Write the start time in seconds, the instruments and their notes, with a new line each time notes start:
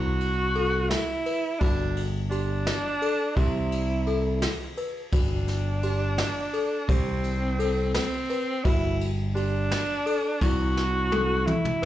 Already playing: picked electric bass C2, celesta E4, alto saxophone F#4
0.21 ride
0.55 celesta A4, ride
0.90 alto saxophone E4, snare, ride
1.26 celesta B4, ride
1.60 picked electric bass G1, alto saxophone D4, celesta F#4, kick, ride
1.97 ride
2.30 alto saxophone D4, celesta G4, ride
2.67 snare, ride
3.02 celesta A4, ride
3.36 picked electric bass C2, alto saxophone E4, celesta G4, kick, ride
3.72 ride
4.07 celesta A4, ride
4.42 snare, ride
4.77 celesta B4, ride
5.12 picked electric bass G1, alto saxophone D4, celesta F#4, kick, ride
5.48 snare, ride
5.83 celesta G4, ride
6.18 snare, ride
6.53 celesta A4, ride
6.89 picked electric bass C2, alto saxophone C4, celesta G4, kick, ride
7.24 ride
7.59 celesta A4, ride
7.94 alto saxophone C4, snare, ride
8.30 celesta B4, ride
8.64 picked electric bass G1, alto saxophone E4, celesta F#4, kick, ride
9.01 ride
9.35 alto saxophone D4, celesta G4, ride
9.71 snare, ride
10.06 celesta A4, ride
10.41 picked electric bass C2, celesta E4, alto saxophone F#4, kick, ride
10.77 snare
11.12 celesta A4, high tom
11.47 alto saxophone E4, mid tom
11.65 mid tom